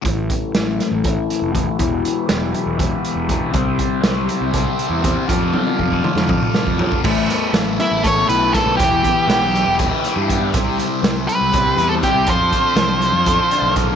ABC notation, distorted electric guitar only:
X:1
M:7/8
L:1/8
Q:1/4=120
K:Edor
V:1 name="Distorted electric guitar" clef=bass
[A,,E,A,]2 [A,,E,A,] [E,A,] [A,,E,A,]2 [A,,E,A,] | [E,,B,,E,]2 [E,,B,,E,] [B,,E,] [E,,B,,E,]2 [E,,B,,E,] | [=C,G,=C]2 [C,G,C] [G,C] [C,G,C]2 [C,G,C] | [=F,,=C,=F,]2 [F,,C,F,] [C,F,] [F,,C,F,]2 [F,,C,F,] |
A, B, A, B, A E B, | E, B, E, B, G E B, | =C, G, G, =C G E C | =F, =C F, C A D C |]